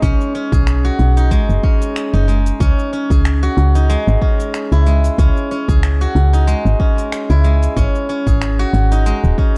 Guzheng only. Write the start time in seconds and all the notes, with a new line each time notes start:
Already playing: G#3 D#4 F#4 G#4
0.02 C#4
0.35 C#4
0.52 G#4
0.85 F#4
1.17 D#4
1.31 G#3
1.64 C#4
2.14 D#4
2.28 G#3
2.60 C#4
2.93 C#4
3.11 G#4
3.43 F#4
3.75 D#4
3.90 G#3
4.22 C#4
4.72 E4
4.87 G#3
5.19 C#4
5.51 C#4
5.69 G#4
6.01 F#4
6.33 D#4
6.47 G#3
6.80 C#4
7.30 E4
7.44 G#3
7.77 C#4
8.09 C#4
8.27 G#4
8.59 F#4
8.92 D#4
9.06 G#3
9.38 C#4